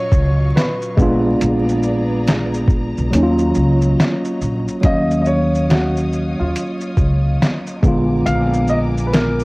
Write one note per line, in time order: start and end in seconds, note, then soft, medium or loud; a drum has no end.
0.00 0.94 A#2 medium
0.00 0.93 F#3 medium
0.00 0.94 F#3 medium
0.00 0.94 C#4 medium
0.00 0.95 F4 medium
0.00 0.58 C#5 loud
0.00 0.94 D#5 medium
0.00 0.94 F5 medium
0.00 0.94 C#6 medium
0.12 0.50 C#2 medium
0.12 kick medium
0.12 shaker medium
0.56 1.22 B4 medium
0.56 snare loud
0.56 closed hi-hat medium
0.56 shaker medium
0.82 shaker soft
0.97 1.36 A#1 loud
0.97 3.08 G#3 medium
0.97 3.08 B3 medium
0.97 3.09 G#4 medium
0.97 3.09 B4 medium
0.97 3.09 D5 medium
0.97 4.79 A#5 medium
0.97 kick loud
0.97 shaker soft
1.01 3.09 D4 medium
1.01 3.10 F4 medium
1.41 2.93 A#1 loud
1.41 closed hi-hat medium
1.41 shaker medium
1.69 shaker soft
1.83 shaker soft
2.28 snare loud
2.28 closed hi-hat medium
2.28 shaker medium
2.54 shaker soft
2.68 kick medium
2.68 shaker soft
2.97 3.11 B1 medium
2.97 shaker soft
3.11 3.50 D#2 loud
3.11 4.79 F#3 medium
3.11 4.82 F#3 medium
3.11 4.80 A#3 medium
3.11 4.81 C#4 medium
3.11 4.82 C#5 medium
3.11 4.82 D#5 medium
3.11 closed hi-hat medium
3.11 shaker medium
3.16 3.22 D#4 medium
3.23 4.85 F4 medium
3.38 shaker soft
3.55 3.93 C#2 medium
3.55 shaker medium
3.82 shaker soft
4.00 snare loud
4.00 closed hi-hat medium
4.00 shaker medium
4.25 shaker soft
4.41 4.66 A#1 medium
4.41 shaker soft
4.68 shaker soft
4.81 6.36 D#2 medium
4.81 7.78 F#3 medium
4.81 7.79 A#3 medium
4.81 7.80 C#4 medium
4.81 7.80 C#5 medium
4.81 7.80 D#5 medium
4.81 5.20 D#5 loud
4.81 7.80 F5 medium
4.81 7.80 D#6 medium
4.81 kick loud
4.81 closed hi-hat medium
4.81 shaker medium
4.86 7.81 F5 medium
5.11 shaker medium
5.22 5.26 D#5 medium
5.22 shaker soft
5.27 5.71 C#5 medium
5.55 shaker soft
5.69 6.42 F#4 medium
5.69 snare loud
5.69 closed hi-hat medium
5.69 shaker medium
5.97 shaker soft
6.13 shaker soft
6.40 6.53 D#2 medium
6.40 7.79 F4 medium
6.56 closed hi-hat medium
6.56 shaker medium
6.81 shaker soft
6.97 7.36 C#2 medium
6.97 kick medium
6.97 shaker soft
7.42 snare loud
7.42 closed hi-hat medium
7.42 shaker medium
7.67 shaker soft
7.83 8.21 A#1 medium
7.83 9.44 D3 medium
7.83 9.44 G#3 medium
7.83 9.44 B3 medium
7.83 9.44 G#5 medium
7.83 9.44 A#5 medium
7.83 9.44 D6 medium
7.83 kick loud
7.83 shaker soft
7.88 9.44 F4 medium
8.26 9.44 A#1 loud
8.26 8.70 F5 loud
8.26 closed hi-hat medium
8.26 shaker medium
8.54 shaker soft
8.68 8.78 D#5 loud
8.68 shaker soft
8.98 shaker soft
9.07 9.12 B4 medium
9.13 9.44 A#4 medium
9.13 snare loud
9.13 closed hi-hat medium
9.13 shaker medium
9.40 shaker soft